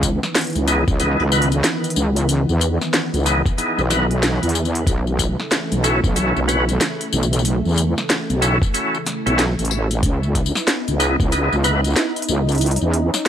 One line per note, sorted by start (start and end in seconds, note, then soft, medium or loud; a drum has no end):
0.00 0.20 C#2 loud
0.00 4.83 D#3 medium
0.00 9.99 E3 medium
0.00 4.82 B3 medium
0.00 kick medium
0.00 closed hi-hat medium
0.00 tambourine medium
0.23 snare medium
0.23 tambourine soft
0.35 snare loud
0.35 closed hi-hat medium
0.35 tambourine soft
0.38 closed hi-hat medium
0.41 closed hi-hat soft
0.44 closed hi-hat soft
0.47 closed hi-hat soft
0.50 closed hi-hat soft
0.53 0.84 C#2 loud
0.53 closed hi-hat soft
0.55 closed hi-hat soft
0.55 tambourine soft
0.67 0.84 B3 medium
0.67 0.84 D#4 medium
0.67 0.84 E4 medium
0.67 0.84 G#4 medium
0.67 closed hi-hat medium
0.67 tambourine medium
0.88 1.17 C#2 loud
0.88 kick loud
0.88 tambourine soft
1.00 1.24 B3 medium
1.00 1.24 D#4 medium
1.00 1.24 E4 medium
1.00 1.24 G#4 medium
1.00 closed hi-hat medium
1.00 tambourine soft
1.20 1.62 C#2 loud
1.20 tambourine soft
1.32 1.49 B3 medium
1.32 1.49 D#4 medium
1.32 1.49 E4 medium
1.32 1.49 B4 medium
1.32 tambourine medium
1.42 closed hi-hat medium
1.52 closed hi-hat soft
1.52 tambourine soft
1.64 snare loud
1.64 closed hi-hat medium
1.64 tambourine soft
1.84 closed hi-hat soft
1.84 tambourine soft
1.90 closed hi-hat medium
1.96 2.46 C#2 loud
1.96 tambourine medium
2.16 closed hi-hat medium
2.16 tambourine soft
2.29 closed hi-hat medium
2.29 tambourine soft
2.49 2.78 E2 loud
2.49 tambourine soft
2.61 closed hi-hat medium
2.61 tambourine medium
2.81 snare medium
2.81 tambourine soft
2.94 snare loud
2.94 closed hi-hat medium
2.94 tambourine soft
3.13 3.42 C#2 loud
3.13 closed hi-hat soft
3.13 tambourine soft
3.17 tambourine soft
3.20 tambourine soft
3.23 3.42 B3 medium
3.23 3.42 D#4 medium
3.23 3.42 E4 medium
3.23 3.42 G#4 medium
3.23 closed hi-hat medium
3.23 tambourine soft
3.26 tambourine medium
3.46 kick loud
3.46 tambourine soft
3.58 3.82 B3 medium
3.58 3.82 D#4 medium
3.58 3.82 E4 medium
3.58 3.82 G#4 medium
3.58 closed hi-hat medium
3.58 tambourine soft
3.78 4.39 B1 loud
3.78 tambourine soft
3.90 4.07 B3 medium
3.90 4.07 D#4 medium
3.90 4.07 E4 medium
3.90 4.07 B4 medium
3.90 snare medium
3.90 closed hi-hat medium
3.90 tambourine medium
4.11 closed hi-hat soft
4.23 snare loud
4.23 closed hi-hat medium
4.23 tambourine soft
4.43 4.85 E2 loud
4.43 closed hi-hat soft
4.43 tambourine soft
4.49 closed hi-hat medium
4.55 tambourine medium
4.65 closed hi-hat soft
4.65 tambourine soft
4.75 closed hi-hat medium
4.86 5.36 B1 loud
4.86 9.99 C#3 medium
4.86 9.99 A3 medium
4.86 kick loud
4.86 closed hi-hat medium
4.86 tambourine soft
5.07 tambourine soft
5.19 kick medium
5.19 closed hi-hat medium
5.19 tambourine medium
5.40 snare medium
5.52 snare loud
5.52 closed hi-hat medium
5.52 tambourine soft
5.72 6.01 B1 medium
5.72 closed hi-hat soft
5.72 tambourine soft
5.83 6.00 C#4 medium
5.83 6.00 E4 medium
5.83 6.00 F#4 medium
5.83 6.00 A4 medium
5.83 closed hi-hat medium
5.83 tambourine medium
6.04 6.33 B1 loud
6.04 kick loud
6.04 tambourine soft
6.16 6.40 C#4 medium
6.16 6.40 E4 medium
6.16 6.40 F#4 medium
6.16 6.40 A4 medium
6.16 closed hi-hat medium
6.16 tambourine soft
6.36 6.78 B1 loud
6.36 tambourine soft
6.48 6.65 C#4 medium
6.48 6.65 E4 medium
6.48 6.65 F#4 medium
6.48 6.65 B4 medium
6.48 closed hi-hat medium
6.48 tambourine medium
6.69 closed hi-hat soft
6.69 tambourine soft
6.81 snare loud
6.81 closed hi-hat medium
6.81 tambourine soft
7.01 closed hi-hat soft
7.01 tambourine soft
7.13 7.62 B1 loud
7.13 tambourine medium
7.23 tambourine medium
7.33 closed hi-hat medium
7.33 tambourine medium
7.39 tambourine soft
7.45 closed hi-hat medium
7.45 tambourine soft
7.65 7.94 E2 loud
7.65 tambourine soft
7.67 tambourine soft
7.71 tambourine soft
7.72 tambourine soft
7.74 tambourine soft
7.76 closed hi-hat medium
7.76 tambourine soft
7.78 tambourine medium
7.98 snare medium
7.98 tambourine soft
8.10 snare loud
8.10 closed hi-hat medium
8.10 tambourine soft
8.30 8.59 B1 loud
8.30 closed hi-hat soft
8.30 tambourine soft
8.42 8.58 C#4 medium
8.42 8.58 E4 medium
8.42 8.58 F#4 medium
8.42 8.58 A4 medium
8.42 closed hi-hat medium
8.42 tambourine medium
8.62 kick loud
8.62 tambourine soft
8.74 8.98 C#4 medium
8.74 8.98 E4 medium
8.74 8.98 F#4 medium
8.74 8.98 A4 medium
8.74 closed hi-hat medium
8.74 tambourine soft
8.95 tambourine soft
9.07 snare medium
9.07 closed hi-hat medium
9.26 9.55 B1 loud
9.26 9.45 C#4 medium
9.26 9.45 E4 medium
9.26 9.45 F#4 medium
9.26 9.45 A4 medium
9.26 closed hi-hat soft
9.26 tambourine soft
9.39 snare loud
9.39 closed hi-hat medium
9.39 tambourine soft
9.59 10.01 A1 loud
9.59 closed hi-hat soft
9.59 tambourine soft
9.65 closed hi-hat medium
9.71 tambourine medium
9.91 closed hi-hat medium
9.91 tambourine soft
10.02 10.52 C#2 loud
10.02 12.58 B3 medium
10.02 13.28 D#4 medium
10.02 13.28 E4 medium
10.02 kick loud
10.02 closed hi-hat medium
10.02 tambourine soft
10.23 tambourine soft
10.35 kick medium
10.35 closed hi-hat medium
10.35 tambourine soft
10.46 tambourine soft
10.55 snare medium
10.55 tambourine soft
10.55 tambourine medium
10.68 snare loud
10.68 closed hi-hat medium
10.68 tambourine soft
10.88 11.17 C#2 loud
10.88 closed hi-hat soft
10.88 tambourine soft
11.00 11.16 B3 medium
11.00 11.16 D#4 medium
11.00 11.16 E4 medium
11.00 11.16 G#4 medium
11.00 closed hi-hat medium
11.00 tambourine medium
11.20 11.49 C#2 loud
11.20 kick loud
11.20 tambourine soft
11.32 11.56 B3 medium
11.32 11.56 D#4 medium
11.32 11.56 E4 medium
11.32 11.56 G#4 medium
11.32 closed hi-hat medium
11.32 tambourine soft
11.52 11.95 C#2 loud
11.52 tambourine soft
11.64 11.81 B3 medium
11.64 11.81 D#4 medium
11.64 11.81 E4 medium
11.64 11.81 B4 medium
11.64 closed hi-hat medium
11.64 tambourine medium
11.84 closed hi-hat soft
11.84 tambourine soft
11.87 tambourine soft
11.90 tambourine soft
11.93 snare loud
11.93 closed hi-hat medium
11.93 tambourine soft
11.96 tambourine soft
12.16 closed hi-hat medium
12.16 tambourine soft
12.22 closed hi-hat medium
12.29 12.78 C#2 loud
12.29 tambourine medium
12.49 closed hi-hat soft
12.49 tambourine soft
12.52 closed hi-hat soft
12.55 closed hi-hat soft
12.58 closed hi-hat soft
12.61 13.28 C#4 medium
12.61 closed hi-hat medium
12.61 tambourine soft
12.66 closed hi-hat medium
12.71 closed hi-hat medium
12.76 closed hi-hat medium
12.81 13.10 E2 loud
12.81 tambourine soft
12.94 closed hi-hat medium
13.14 snare medium
13.14 tambourine medium